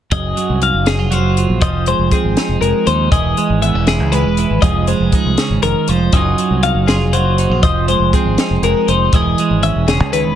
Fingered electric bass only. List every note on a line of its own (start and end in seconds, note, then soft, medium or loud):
0.12 0.32 F#1 medium
0.50 0.70 C2 medium
0.74 0.99 F#1 medium
0.99 1.25 F1 medium
1.25 1.45 F#1 medium
1.50 1.60 A#1 medium
1.62 1.92 F1 loud
1.99 2.09 F1 medium
2.24 2.34 G#1 medium
2.49 2.59 F1 medium
2.61 2.72 F1 medium
2.87 3.07 D#2 medium
3.12 3.32 E1 medium
3.50 3.70 G#1 medium
3.75 4.00 E1 medium
4.00 4.25 C#2 medium
4.25 4.45 E1 medium
4.51 4.60 G#1 medium
4.62 4.93 F1 loud
5.00 5.10 F1 loud
5.25 5.35 C2 medium
5.50 5.60 G#1 medium
5.63 5.73 F1 medium
5.89 6.08 F1 medium
6.13 6.33 F#1 medium
6.50 6.71 C2 medium
6.75 7.00 F#1 medium
7.00 7.25 F1 medium
7.25 7.45 F#1 medium
7.50 7.60 A#1 medium
7.63 7.93 F1 loud
8.00 8.10 F1 medium
8.25 8.35 G#1 medium
8.51 8.61 F1 medium
8.62 8.73 F1 medium
8.88 9.08 F1 medium
9.13 9.33 E1 medium
9.51 9.71 G#1 medium
9.76 10.00 E1 medium
10.00 10.25 C#2 medium
10.25 10.35 E1 medium